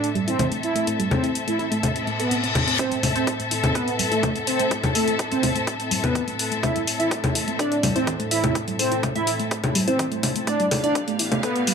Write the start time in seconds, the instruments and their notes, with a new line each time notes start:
Already playing: synth drone A2, string section C4 A4 E5
0.04 closed hi-hat
0.15 synth arpeggio sound G3, closed hi-hat
0.28 analog polysynth C4, synth arpeggio sound E4, closed hi-hat
0.39 synth arpeggio sound E3, closed hi-hat, low conga
0.52 synth arpeggio sound A3, closed hi-hat
0.63 analog polysynth E4, closed hi-hat
0.76 synth arpeggio sound A3, closed hi-hat
0.87 synth arpeggio sound A3, closed hi-hat
1.00 synth arpeggio sound G3, closed hi-hat
1.11 analog polysynth C4, synth arpeggio sound A4, closed hi-hat, low conga
1.24 synth arpeggio sound E4, closed hi-hat
1.35 closed hi-hat
1.48 synth arpeggio sound A3, analog polysynth E4, closed hi-hat
1.59 synth arpeggio sound E4, closed hi-hat
1.72 synth arpeggio sound A3, closed hi-hat
1.83 synth arpeggio sound A4, closed hi-hat, reverse cymbal, low conga
1.96 closed hi-hat
2.07 synth arpeggio sound A3, closed hi-hat
2.20 analog polysynth B3, synth arpeggio sound A4, closed hi-hat
2.31 synth arpeggio sound C4, closed hi-hat
2.44 synth arpeggio sound C4, closed hi-hat
2.55 closed hi-hat, low conga
2.68 synth arpeggio sound C4, closed hi-hat
2.79 synth drone A2, analog polysynth C4, synth pluck C5, kick, closed hi-hat
2.92 synth arpeggio sound G3, closed hi-hat
3.03 open hi-hat, low conga
3.16 analog polysynth C4, synth arpeggio sound E4, synth pluck C5, closed hi-hat
3.27 kick, closed hi-hat
3.40 synth arpeggio sound A3, closed hi-hat
3.51 synth arpeggio sound E4, open hi-hat
3.64 synth arpeggio sound A3, closed hi-hat, low conga
3.75 analog polysynth B3, synth pluck B4, kick, closed hi-hat
3.88 closed hi-hat
3.99 synth arpeggio sound G3, open hi-hat
4.12 analog polysynth A3, synth arpeggio sound E4, synth pluck A4, closed hi-hat
4.23 synth arpeggio sound E3, kick, closed hi-hat, low conga
4.36 synth arpeggio sound A3, closed hi-hat
4.47 analog polysynth C4, synth pluck C5, open hi-hat
4.60 synth arpeggio sound A3, closed hi-hat
4.71 synth arpeggio sound A3, kick, closed hi-hat
4.84 synth arpeggio sound G3, closed hi-hat, low conga
4.95 analog polysynth A3, synth pluck A4, synth arpeggio sound A4, open hi-hat
5.08 synth arpeggio sound E4, closed hi-hat
5.19 kick, closed hi-hat
5.32 synth arpeggio sound A3, analog polysynth C4, synth pluck C5, closed hi-hat
5.43 synth arpeggio sound E4, open hi-hat, low conga
5.56 synth arpeggio sound A3, closed hi-hat
5.67 synth arpeggio sound A4, kick, closed hi-hat
5.80 closed hi-hat
5.91 synth arpeggio sound G3, open hi-hat
6.04 analog polysynth B3, synth arpeggio sound E4, synth pluck B4, closed hi-hat, low conga
6.15 synth arpeggio sound E3, kick, closed hi-hat
6.28 synth arpeggio sound A3, closed hi-hat
6.39 open hi-hat
6.52 synth arpeggio sound A3, closed hi-hat
6.63 synth arpeggio sound A3, analog polysynth E4, synth pluck E5, kick, closed hi-hat, low conga
6.76 synth arpeggio sound G3, closed hi-hat
6.87 synth arpeggio sound A4, open hi-hat
7.00 synth arpeggio sound E4, analog polysynth E4, synth pluck E5, closed hi-hat
7.11 kick, closed hi-hat
7.24 synth arpeggio sound A3, closed hi-hat, low conga
7.35 synth arpeggio sound E4, open hi-hat
7.48 synth arpeggio sound A3, closed hi-hat
7.59 analog polysynth D4, synth arpeggio sound A4, synth pluck D5, kick, closed hi-hat
7.72 closed hi-hat
7.83 synth arpeggio sound G3, open hi-hat, low conga
7.96 analog polysynth C4, synth arpeggio sound E4, synth pluck C5, closed hi-hat
8.07 synth arpeggio sound E3, kick, closed hi-hat
8.20 synth arpeggio sound A3, closed hi-hat
8.31 analog polysynth E4, synth pluck E5, open hi-hat
8.44 synth arpeggio sound A3, closed hi-hat, low conga
8.55 synth arpeggio sound A3, kick, closed hi-hat
8.68 synth arpeggio sound G3, closed hi-hat
8.79 analog polysynth C4, synth arpeggio sound A4, synth pluck C5, open hi-hat
8.91 synth arpeggio sound E4, closed hi-hat
9.03 kick, closed hi-hat, low conga
9.15 synth arpeggio sound A3, analog polysynth E4, synth pluck E5, closed hi-hat
9.27 synth arpeggio sound E4, open hi-hat
9.40 synth arpeggio sound A3, closed hi-hat
9.51 synth arpeggio sound A4, kick, closed hi-hat
9.64 closed hi-hat, low conga
9.75 synth arpeggio sound G3, open hi-hat
9.88 analog polysynth C4, synth arpeggio sound E4, synth pluck C5, closed hi-hat
9.99 synth arpeggio sound E3, kick, closed hi-hat
10.12 synth arpeggio sound A3, closed hi-hat
10.23 open hi-hat, low conga
10.36 synth arpeggio sound A3, closed hi-hat
10.47 synth arpeggio sound A3, string section B3, analog polysynth D4, synth pluck D5, kick, closed hi-hat, riser
10.60 synth arpeggio sound G3, closed hi-hat
10.65 string section G4 F5
10.71 synth arpeggio sound A4, open hi-hat, low conga
10.84 analog polysynth D4, synth arpeggio sound E4, synth pluck D5, closed hi-hat
10.95 kick, closed hi-hat
11.08 synth arpeggio sound A3, closed hi-hat
11.19 synth arpeggio sound E4, open hi-hat
11.32 synth arpeggio sound A3, closed hi-hat, low conga
11.43 analog polysynth B3, synth arpeggio sound A4, synth pluck B4, kick, closed hi-hat
11.56 closed hi-hat
11.67 synth arpeggio sound G3, open hi-hat